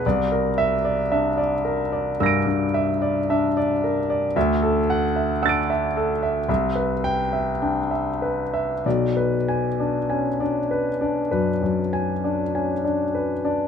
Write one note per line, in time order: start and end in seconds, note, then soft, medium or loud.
0.06 2.16 C2 medium
0.06 0.47 D5 medium
0.32 0.74 A#4 soft
0.58 1.00 E5 medium
0.85 1.27 D5 soft
1.12 1.38 D4 soft
1.12 1.54 E5 medium
1.37 1.81 D5 soft
1.65 2.08 A#4 soft
1.92 2.36 D5 soft
2.20 2.45 G2 medium
2.20 2.64 A#4 medium
2.20 4.32 E6 soft
2.20 4.34 A#6 soft
2.26 4.35 D7 soft
2.47 2.91 G2 soft
2.74 3.18 E5 medium
3.02 3.45 D5 soft
3.29 3.56 D4 soft
3.29 3.73 E5 medium
3.57 3.99 D5 medium
3.84 4.26 A#4 soft
4.10 4.36 D5 soft
4.36 6.45 D2 medium
4.36 4.78 E5 medium
4.62 5.05 A4 medium
4.90 5.32 F#5 medium
5.16 5.59 E5 soft
5.42 5.69 D4 soft
5.42 5.85 F#5 medium
5.42 6.45 E6 soft
5.42 6.47 A6 soft
5.49 6.48 D7 soft
5.70 6.12 E5 soft
5.97 6.39 A4 soft
6.23 6.48 E5 soft
6.49 8.81 C2 medium
6.49 6.92 E5 soft
6.75 7.20 B4 soft
7.04 7.50 G5 medium
7.33 7.79 E5 soft
7.62 7.92 D4 soft
7.62 8.10 G5 soft
7.91 8.40 E5 soft
8.22 8.72 B4 soft
8.54 8.85 E5 soft
8.85 11.27 B1 soft
8.85 9.36 D5 soft
9.17 9.66 B4 soft
9.48 9.97 G#5 soft
9.80 10.28 D4 soft
9.80 10.28 D5 soft
10.10 10.40 C#4 soft
10.10 10.58 G#5 soft
10.40 10.88 D4 soft
10.40 10.88 D5 soft
10.71 11.19 B4 soft
11.01 11.50 D4 soft
11.01 11.50 D5 soft
11.31 11.61 F#2 soft
11.31 11.80 B4 soft
11.63 12.11 F#2 soft
11.93 12.41 G#5 soft
12.24 12.71 D4 soft
12.24 12.71 D5 soft
12.55 12.84 C#4 soft
12.55 13.02 G#5 soft
12.84 13.32 D4 soft
12.84 13.32 D5 soft
13.15 13.62 B4 soft
13.45 13.68 D4 soft
13.45 13.68 D5 soft